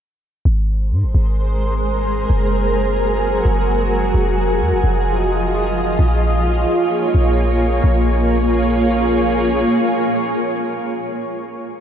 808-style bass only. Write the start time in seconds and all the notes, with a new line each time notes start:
0.45 G#1
0.92 G#2
1.03 G#1
1.15 G#1
2.30 F#1
3.45 F#1
4.14 F1
4.61 F2
4.72 F1
4.84 F1
5.65 F#1
5.99 A#1
7.15 A#1
7.84 A#1